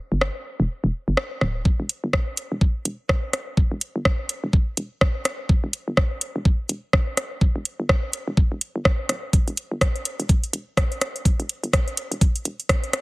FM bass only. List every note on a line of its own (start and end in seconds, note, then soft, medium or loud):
0.12 0.30 G1 medium
0.60 0.68 E1 medium
0.84 0.92 E1 medium
1.08 1.16 G1 medium
1.41 1.62 D1 medium
1.80 1.88 E1 medium
2.04 2.22 G1 medium
2.52 2.60 E1 medium
2.85 2.97 E1 medium
3.71 3.79 E1 loud
3.96 4.14 G1 medium
4.44 4.52 E1 medium
4.77 4.89 E1 medium
5.64 5.72 E1 loud
5.88 6.06 G1 medium
6.36 6.44 E1 medium
6.69 6.81 E1 medium
7.56 7.64 E1 medium
7.80 7.98 G1 medium
8.28 8.35 E1 medium
8.52 8.60 E1 medium
8.76 8.84 G1 medium
9.09 9.30 D1 medium
9.48 9.56 E1 loud
9.71 9.90 G1 medium
10.20 10.27 E1 medium
10.53 10.65 E1 medium
11.40 11.48 E1 loud
11.63 11.82 G1 medium
12.11 12.19 E1 medium
12.45 12.57 E1 medium